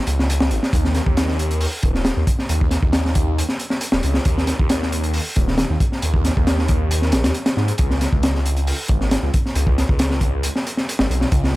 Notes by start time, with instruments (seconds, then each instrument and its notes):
0.07 detuned saw bass C#2, closed hi-hat
0.19 snare
0.30 closed hi-hat
0.40 snare
0.51 detuned saw bass G#1, closed hi-hat
0.63 snare
0.73 detuned saw bass D#2, kick, closed hi-hat
0.84 snare
0.95 snare, closed hi-hat
1.06 detuned saw bass D#2, kick
1.17 snare, closed hi-hat
1.28 snare
1.39 closed hi-hat
1.51 closed hi-hat
1.61 open hi-hat
1.83 detuned saw bass D#1, kick, closed hi-hat
1.95 snare
2.05 snare, closed hi-hat
2.17 detuned saw bass D#2
2.27 kick, closed hi-hat
2.39 snare
2.49 detuned saw bass D#2, closed hi-hat
2.61 kick
2.71 snare, closed hi-hat
2.83 detuned saw bass D#2, kick
2.93 snare, closed hi-hat
3.05 snare
3.15 kick, closed hi-hat
3.38 closed hi-hat
3.49 snare
3.59 closed hi-hat
3.70 snare
3.81 closed hi-hat
3.92 detuned saw bass D#1, snare
4.03 detuned saw bass C#2, closed hi-hat
4.14 snare
4.25 detuned saw bass D#2, kick, closed hi-hat
4.38 snare
4.47 snare, closed hi-hat
4.59 detuned saw bass D#2, kick
4.69 snare, closed hi-hat
4.83 snare
4.92 closed hi-hat
5.04 closed hi-hat
5.13 open hi-hat
5.36 detuned saw bass D#1, kick, closed hi-hat
5.48 snare
5.58 snare, closed hi-hat
5.70 detuned saw bass D#2
5.80 kick, closed hi-hat
5.92 snare
6.02 detuned saw bass D#2, closed hi-hat
6.14 kick
6.25 snare, closed hi-hat
6.37 detuned saw bass D#2, kick
6.47 snare, closed hi-hat
6.58 snare
6.68 kick, closed hi-hat
6.91 closed hi-hat
7.02 snare
7.12 detuned saw bass A#1, snare, closed hi-hat
7.24 detuned saw bass D#2, snare, closed hi-hat
7.34 closed hi-hat
7.46 snare, closed hi-hat
7.57 detuned saw bass G#2, snare
7.68 closed hi-hat
7.78 detuned saw bass C#2, kick, closed hi-hat
7.90 snare
8.01 snare, closed hi-hat
8.13 detuned saw bass C#2, kick
8.23 snare, closed hi-hat
8.35 snare
8.46 closed hi-hat
8.56 closed hi-hat
8.67 open hi-hat
8.88 detuned saw bass G#1, kick, closed hi-hat
9.01 snare
9.11 snare, closed hi-hat
9.23 detuned saw bass C#2
9.34 kick, closed hi-hat
9.46 snare
9.55 detuned saw bass C#2, closed hi-hat
9.67 kick
9.78 snare, closed hi-hat
9.89 detuned saw bass C#2, kick
9.99 snare, closed hi-hat
10.10 snare
10.21 kick, closed hi-hat
10.43 closed hi-hat
10.56 snare
10.67 closed hi-hat
10.77 snare
10.89 closed hi-hat
10.99 detuned saw bass G#1, snare
11.10 detuned saw bass B1, closed hi-hat
11.21 snare
11.32 detuned saw bass C#2, kick, closed hi-hat
11.44 snare